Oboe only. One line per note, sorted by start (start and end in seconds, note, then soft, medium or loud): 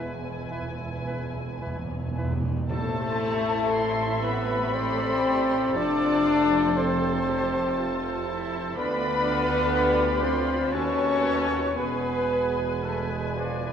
0.00 0.13 B4 medium
0.51 0.67 B4 soft
1.07 1.23 B4 medium
1.62 1.78 B4 soft
2.17 2.33 B4 soft
2.71 8.74 A4 medium
8.78 10.77 F4 medium
10.75 11.62 A4 medium
11.79 12.72 G#4 medium
12.85 13.34 B4 medium
13.39 13.73 D5 medium